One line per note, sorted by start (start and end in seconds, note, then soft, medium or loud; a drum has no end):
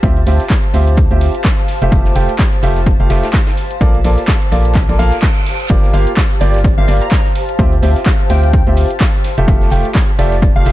0.00 0.25 D2 medium
0.00 0.18 C4 medium
0.00 0.18 F4 medium
0.00 10.72 G4 medium
0.00 0.18 G4 medium
0.00 10.72 C5 medium
0.00 0.18 E5 loud
0.00 10.72 F5 medium
0.00 10.72 A5 medium
0.00 kick loud
0.00 closed hi-hat medium
0.17 closed hi-hat soft
0.27 0.39 D2 loud
0.27 0.41 C4 medium
0.27 0.41 F4 medium
0.27 0.41 G4 medium
0.27 0.41 E5 medium
0.27 closed hi-hat medium
0.27 open hi-hat loud
0.40 snare soft
0.40 closed hi-hat medium
0.50 kick loud
0.50 snare loud
0.50 clap loud
0.50 closed hi-hat medium
0.50 closed hi-hat soft
0.64 closed hi-hat soft
0.74 1.08 D2 medium
0.74 0.96 C4 medium
0.74 0.96 F4 medium
0.74 0.96 G4 medium
0.74 0.96 E5 medium
0.74 open hi-hat medium
0.74 open hi-hat loud
0.87 closed hi-hat soft
0.97 kick loud
0.97 closed hi-hat loud
0.97 closed hi-hat soft
1.11 1.29 D2 medium
1.11 1.32 C4 medium
1.11 1.32 F4 medium
1.11 1.32 G4 medium
1.11 1.32 E5 medium
1.11 closed hi-hat soft
1.21 closed hi-hat medium
1.21 open hi-hat loud
1.35 closed hi-hat medium
1.44 kick loud
1.44 snare loud
1.44 clap loud
1.44 closed hi-hat medium
1.58 closed hi-hat soft
1.68 snare soft
1.68 closed hi-hat medium
1.68 open hi-hat loud
1.82 1.90 F1 medium
1.82 1.90 A3 loud
1.82 1.90 F4 medium
1.82 1.90 G4 medium
1.82 1.90 E5 loud
1.82 closed hi-hat soft
1.92 2.14 F1 loud
1.92 2.13 A3 medium
1.92 2.13 F4 medium
1.92 2.13 G4 medium
1.92 2.13 E5 medium
1.92 kick loud
1.92 closed hi-hat medium
2.05 snare soft
2.05 closed hi-hat soft
2.15 2.28 F1 loud
2.15 2.30 A3 medium
2.15 2.30 F4 medium
2.15 2.30 G4 medium
2.15 2.30 G5 medium
2.15 closed hi-hat medium
2.15 open hi-hat loud
2.29 closed hi-hat medium
2.39 kick loud
2.39 snare loud
2.39 clap loud
2.39 closed hi-hat medium
2.53 closed hi-hat soft
2.63 2.97 F1 medium
2.63 2.78 A3 medium
2.63 2.78 F4 medium
2.63 2.78 G4 medium
2.63 2.78 E5 loud
2.63 closed hi-hat medium
2.63 open hi-hat loud
2.76 snare medium
2.76 closed hi-hat medium
2.86 kick loud
2.86 closed hi-hat soft
2.86 closed hi-hat medium
3.00 3.08 F1 medium
3.00 3.09 A3 medium
3.00 3.09 F4 medium
3.00 3.09 G4 medium
3.00 3.09 F5 medium
3.00 closed hi-hat soft
3.10 3.23 F1 loud
3.10 3.25 A3 medium
3.10 3.25 F4 medium
3.10 3.25 G4 medium
3.10 3.25 E5 loud
3.10 snare loud
3.10 closed hi-hat medium
3.10 open hi-hat loud
3.23 snare loud
3.23 closed hi-hat medium
3.33 kick loud
3.33 snare loud
3.33 clap loud
3.33 closed hi-hat medium
3.47 snare loud
3.47 closed hi-hat medium
3.47 closed hi-hat soft
3.57 closed hi-hat medium
3.57 open hi-hat loud
3.71 closed hi-hat medium
3.81 4.03 A#1 medium
3.81 3.96 A#3 medium
3.81 3.96 F4 medium
3.81 3.96 A4 medium
3.81 3.96 D5 loud
3.81 kick loud
3.81 closed hi-hat medium
3.94 closed hi-hat soft
4.04 4.17 A#1 loud
4.04 4.19 A#3 medium
4.04 4.19 F4 medium
4.04 4.19 A4 medium
4.04 4.19 D5 medium
4.04 closed hi-hat medium
4.04 open hi-hat loud
4.18 snare soft
4.18 closed hi-hat medium
4.28 kick loud
4.28 snare loud
4.28 clap loud
4.28 closed hi-hat medium
4.42 closed hi-hat soft
4.52 4.86 A#1 medium
4.52 4.73 A#3 medium
4.52 4.73 F4 medium
4.52 4.73 A4 medium
4.52 4.73 D5 medium
4.52 closed hi-hat medium
4.52 open hi-hat loud
4.65 closed hi-hat medium
4.75 kick loud
4.75 clap medium
4.75 closed hi-hat medium
4.75 reverse cymbal medium
4.89 4.97 A#1 medium
4.89 4.97 A#3 medium
4.89 4.97 F4 medium
4.89 4.97 A4 medium
4.89 4.97 D5 medium
4.89 open hi-hat medium
4.99 5.12 A#1 loud
4.99 5.14 A#3 loud
4.99 5.14 F4 medium
4.99 5.14 A4 medium
4.99 5.14 F5 loud
4.99 closed hi-hat medium
4.99 open hi-hat loud
5.13 snare soft
5.13 closed hi-hat medium
5.22 kick loud
5.22 clap loud
5.22 closed hi-hat medium
5.36 closed hi-hat soft
5.46 snare soft
5.46 open hi-hat loud
5.59 closed hi-hat medium
5.70 5.92 G1 medium
5.70 5.91 A#3 medium
5.70 5.91 F4 medium
5.70 5.90 G4 medium
5.70 5.90 D5 medium
5.70 kick loud
5.70 closed hi-hat medium
5.83 snare soft
5.83 closed hi-hat soft
5.93 6.06 G1 loud
5.93 6.08 A#3 medium
5.93 6.08 F4 medium
5.93 6.08 G4 medium
5.93 6.08 F5 loud
5.93 closed hi-hat medium
5.93 open hi-hat loud
6.07 closed hi-hat medium
6.17 kick loud
6.17 snare loud
6.17 clap loud
6.17 closed hi-hat medium
6.31 closed hi-hat soft
6.41 6.75 G1 medium
6.41 6.56 A#3 medium
6.41 6.56 F4 medium
6.41 6.56 G4 medium
6.41 6.56 D5 loud
6.41 6.60 D5 medium
6.41 closed hi-hat medium
6.41 open hi-hat loud
6.54 snare medium
6.54 closed hi-hat medium
6.64 kick loud
6.64 closed hi-hat medium
6.78 6.86 G1 medium
6.78 6.87 A#3 medium
6.78 6.86 F4 medium
6.78 6.86 G4 medium
6.78 6.87 E5 medium
6.78 6.96 F5 medium
6.78 closed hi-hat soft
6.88 7.01 G1 loud
6.88 7.03 A#3 medium
6.88 7.03 F4 medium
6.88 7.03 G4 medium
6.88 7.03 D5 loud
6.88 closed hi-hat medium
6.88 open hi-hat loud
7.02 7.20 A#5 medium
7.02 closed hi-hat medium
7.12 kick loud
7.12 snare loud
7.12 clap loud
7.12 closed hi-hat medium
7.25 snare soft
7.25 closed hi-hat soft
7.35 closed hi-hat medium
7.35 open hi-hat loud
7.49 closed hi-hat medium
7.59 7.80 D2 loud
7.59 7.74 C4 medium
7.59 7.74 F4 medium
7.59 7.74 G4 medium
7.59 7.74 E5 loud
7.59 kick loud
7.59 closed hi-hat medium
7.73 closed hi-hat soft
7.82 7.95 D2 loud
7.82 7.97 C4 medium
7.82 7.97 F4 medium
7.82 7.97 G4 medium
7.82 7.97 E5 medium
7.82 closed hi-hat medium
7.82 open hi-hat loud
7.96 snare soft
7.96 closed hi-hat medium
8.06 kick loud
8.06 snare loud
8.06 clap loud
8.06 closed hi-hat medium
8.20 closed hi-hat soft
8.29 8.64 D2 medium
8.29 8.51 C4 medium
8.29 8.51 F4 medium
8.29 8.51 G4 medium
8.29 8.51 E5 medium
8.29 8.67 G5 medium
8.29 open hi-hat medium
8.29 open hi-hat loud
8.43 closed hi-hat medium
8.53 kick loud
8.53 closed hi-hat soft
8.53 closed hi-hat medium
8.67 8.85 D2 loud
8.67 8.88 C4 medium
8.67 8.88 F4 medium
8.67 8.88 G4 medium
8.67 8.88 E5 medium
8.67 closed hi-hat soft
8.77 closed hi-hat medium
8.77 open hi-hat loud
8.91 closed hi-hat medium
9.00 kick loud
9.00 snare loud
9.00 clap loud
9.00 closed hi-hat medium
9.14 closed hi-hat soft
9.24 snare medium
9.24 closed hi-hat medium
9.24 open hi-hat loud
9.38 9.46 F1 loud
9.38 9.45 A3 loud
9.38 9.45 F4 medium
9.38 9.45 G4 medium
9.38 9.45 E5 loud
9.38 closed hi-hat medium
9.48 9.69 F1 medium
9.48 9.68 A3 medium
9.48 kick loud
9.48 closed hi-hat medium
9.61 snare soft
9.61 closed hi-hat soft
9.70 9.84 F1 loud
9.70 9.86 A3 medium
9.70 9.86 F4 medium
9.70 9.86 G4 medium
9.70 9.86 G5 loud
9.70 closed hi-hat medium
9.70 open hi-hat loud
9.85 closed hi-hat medium
9.94 kick loud
9.94 snare loud
9.94 clap loud
9.94 closed hi-hat medium
10.09 closed hi-hat soft
10.19 10.53 F1 loud
10.19 10.33 A3 medium
10.19 10.33 F4 medium
10.19 10.34 G4 medium
10.19 10.38 D5 medium
10.19 10.33 E5 loud
10.19 closed hi-hat medium
10.19 open hi-hat loud
10.32 snare soft
10.32 closed hi-hat medium
10.42 kick loud
10.42 closed hi-hat soft
10.42 closed hi-hat medium
10.56 10.64 F1 medium
10.56 10.64 A3 medium
10.56 10.64 F4 medium
10.56 10.64 G4 medium
10.56 10.64 F5 medium
10.56 10.72 F5 medium
10.56 closed hi-hat soft
10.65 10.72 F1 medium
10.65 10.72 A3 medium
10.65 10.72 F4 medium
10.65 10.72 G4 medium
10.65 10.72 E5 loud
10.65 closed hi-hat medium
10.65 open hi-hat loud